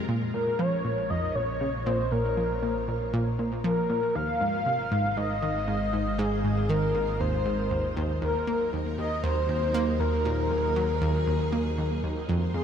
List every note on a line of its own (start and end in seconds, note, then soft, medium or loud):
0.08 4.13 A#1 medium
0.08 0.33 A#2 loud
0.08 4.11 A#3 medium
0.08 4.11 F4 medium
0.08 4.11 C#5 medium
0.34 0.51 A#2 medium
0.34 0.61 A#4 medium
0.59 0.76 F3 loud
0.59 1.11 C#5 loud
0.85 0.95 A#2 medium
1.10 1.27 F2 medium
1.10 1.37 D#5 loud
1.35 1.60 A#2 medium
1.35 1.88 C#5 loud
1.61 1.71 C#3 medium
1.86 2.03 A#2 loud
1.86 2.13 C5 medium
2.12 2.22 A#2 medium
2.12 3.13 A#4 medium
2.37 2.54 F3 medium
2.63 2.87 A#2 medium
2.88 2.98 A#2 medium
3.13 3.38 A#2 loud
3.39 3.56 A#2 medium
3.64 3.81 F3 medium
3.64 4.17 A#4 loud
3.90 4.00 A#2 medium
4.15 8.19 G#1 medium
4.15 4.32 D#2 medium
4.15 8.18 G#3 medium
4.15 6.17 D#4 medium
4.15 8.18 C5 medium
4.15 5.19 F5 loud
4.41 4.65 G#2 medium
4.66 4.76 C3 medium
4.91 5.08 G#2 medium
5.17 5.27 G#2 medium
5.17 6.18 D#5 loud
5.42 5.59 D#3 medium
5.68 5.92 G#2 medium
5.93 6.03 G#2 medium
6.18 6.43 G#2 loud
6.18 8.20 F4 medium
6.18 6.71 G#4 loud
6.44 6.61 G#2 medium
6.69 6.86 D#3 loud
6.69 7.22 A#4 medium
6.95 7.05 G#2 medium
7.20 7.37 D#2 medium
7.20 7.97 C5 medium
7.46 7.62 G#2 medium
7.71 7.95 D#2 medium
7.96 8.21 D#2 loud
8.22 12.26 D#2 medium
8.22 8.32 D#2 medium
8.22 12.25 F#3 medium
8.22 12.25 D#4 medium
8.22 10.23 A#4 medium
8.22 8.69 A#4 loud
8.47 8.64 A#3 medium
8.73 8.97 D#2 medium
8.98 9.08 D#2 medium
8.98 9.22 D#5 loud
9.23 9.48 D#2 medium
9.23 10.01 C5 loud
9.49 9.66 D#2 medium
9.74 9.91 A#3 loud
10.00 10.10 D#2 medium
10.00 12.03 A#4 loud
10.25 10.42 A#2 medium
10.25 12.27 G#4 medium
10.51 10.75 D#2 medium
10.76 10.86 F#3 medium
11.02 11.18 D#2 loud
11.27 11.37 D#2 medium
11.52 11.69 A#3 medium
11.78 12.02 D#2 medium
12.03 12.13 D#2 medium
12.29 12.53 F2 loud
12.29 12.64 G#3 medium
12.29 12.64 F4 medium
12.29 12.64 C5 medium
12.54 12.64 F2 medium
12.54 12.64 G#4 medium